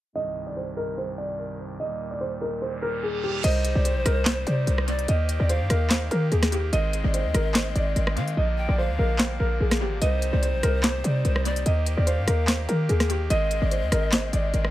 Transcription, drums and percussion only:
3.44 closed hi-hat, crash
3.65 closed hi-hat
3.85 closed hi-hat
4.06 cross-stick, closed hi-hat
4.26 snare, clap, closed hi-hat
4.47 closed hi-hat
4.67 closed hi-hat
4.78 cross-stick
4.88 closed hi-hat
4.99 closed hi-hat
5.08 closed hi-hat
5.29 closed hi-hat
5.49 closed hi-hat
5.70 cross-stick, closed hi-hat
5.90 snare, clap, closed hi-hat
6.11 closed hi-hat
6.32 closed hi-hat
6.43 cross-stick, snare
6.52 closed hi-hat
6.73 closed hi-hat
6.93 closed hi-hat
7.14 closed hi-hat
7.34 cross-stick, closed hi-hat
7.54 snare, clap, closed hi-hat
7.76 closed hi-hat
7.96 closed hi-hat
8.07 cross-stick
8.17 closed hi-hat
8.28 closed hi-hat
9.19 snare, clap
9.71 cross-stick, snare
10.02 closed hi-hat
10.22 closed hi-hat
10.43 closed hi-hat
10.63 cross-stick, closed hi-hat
10.83 snare, clap, closed hi-hat
11.04 closed hi-hat
11.25 closed hi-hat
11.36 cross-stick
11.45 closed hi-hat
11.56 closed hi-hat
11.66 closed hi-hat
11.86 closed hi-hat
12.07 closed hi-hat
12.28 cross-stick, closed hi-hat
12.48 snare, clap, closed hi-hat
12.69 closed hi-hat
12.89 closed hi-hat
13.00 cross-stick, snare
13.10 closed hi-hat
13.30 closed hi-hat
13.51 closed hi-hat
13.71 closed hi-hat
13.92 cross-stick, closed hi-hat
14.12 snare, clap, closed hi-hat
14.33 closed hi-hat
14.54 closed hi-hat
14.65 cross-stick

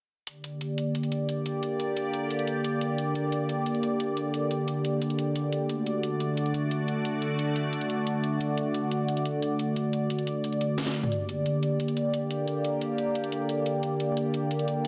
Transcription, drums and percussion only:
0.27 closed hi-hat
0.44 closed hi-hat
0.61 closed hi-hat
0.78 closed hi-hat
0.95 closed hi-hat
1.03 closed hi-hat
1.12 closed hi-hat
1.29 closed hi-hat
1.46 closed hi-hat
1.63 closed hi-hat
1.80 closed hi-hat
1.97 closed hi-hat
2.14 closed hi-hat
2.31 closed hi-hat
2.39 closed hi-hat
2.47 closed hi-hat
2.64 closed hi-hat
2.81 closed hi-hat
2.98 closed hi-hat
3.15 closed hi-hat
3.32 closed hi-hat
3.49 closed hi-hat
3.66 closed hi-hat
3.75 closed hi-hat
3.83 closed hi-hat
4.00 closed hi-hat
4.17 closed hi-hat
4.34 closed hi-hat
4.51 closed hi-hat
4.68 closed hi-hat
4.85 closed hi-hat
5.02 closed hi-hat
5.10 closed hi-hat
5.19 closed hi-hat
5.36 closed hi-hat
5.53 closed hi-hat
5.69 closed hi-hat
5.87 closed hi-hat
6.03 closed hi-hat
6.20 closed hi-hat
6.37 closed hi-hat
6.46 closed hi-hat
6.54 closed hi-hat
6.71 closed hi-hat
6.88 closed hi-hat
7.05 closed hi-hat
7.22 closed hi-hat
7.39 closed hi-hat
7.56 closed hi-hat
7.73 closed hi-hat
7.81 closed hi-hat
7.90 closed hi-hat
8.07 closed hi-hat
8.24 closed hi-hat
8.41 closed hi-hat
8.58 closed hi-hat
8.74 closed hi-hat
8.91 closed hi-hat
9.08 closed hi-hat
9.17 closed hi-hat
9.25 closed hi-hat
9.42 closed hi-hat
9.59 closed hi-hat
9.76 closed hi-hat
9.93 closed hi-hat
10.10 closed hi-hat
10.19 closed hi-hat
10.27 closed hi-hat
10.44 closed hi-hat
10.52 closed hi-hat
10.61 closed hi-hat
10.78 snare, closed hi-hat
10.86 snare
10.95 closed hi-hat
11.03 closed hi-hat, mid tom
11.12 closed hi-hat
11.29 closed hi-hat
11.46 closed hi-hat
11.63 closed hi-hat
11.80 closed hi-hat
11.88 closed hi-hat
11.97 closed hi-hat
12.14 closed hi-hat
12.31 closed hi-hat
12.48 closed hi-hat
12.64 closed hi-hat
12.81 closed hi-hat
12.98 closed hi-hat
13.15 closed hi-hat
13.24 closed hi-hat
13.32 closed hi-hat
13.49 closed hi-hat
13.66 closed hi-hat
13.83 closed hi-hat
14.00 closed hi-hat
14.17 closed hi-hat
14.34 closed hi-hat
14.51 closed hi-hat
14.59 closed hi-hat
14.68 closed hi-hat

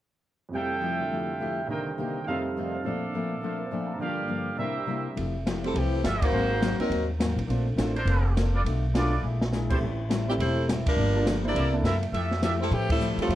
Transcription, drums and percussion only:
5.17 ride
5.47 snare, hi-hat pedal, ride
5.64 ride
5.76 ride
6.04 snare, hi-hat pedal, ride
6.22 kick, ride
6.62 snare, hi-hat pedal, ride
6.80 ride
6.92 ride
7.20 snare, hi-hat pedal, ride
7.39 ride
7.50 ride
7.78 snare, hi-hat pedal, ride
7.96 ride
8.07 ride
8.37 snare, hi-hat pedal, ride
8.66 ride
8.95 snare, hi-hat pedal, ride
9.41 snare
9.53 snare, hi-hat pedal
9.70 kick, crash
10.10 snare, hi-hat pedal, ride
10.40 ride
10.69 snare, hi-hat pedal, ride
10.86 kick, ride
11.27 snare, hi-hat pedal, ride
11.56 ride
11.85 snare, hi-hat pedal, ride
12.03 ride
12.14 ride
12.31 snare
12.42 snare, hi-hat pedal, ride
12.72 ride
12.90 kick, ride
13.01 hi-hat pedal
13.19 ride
13.30 ride

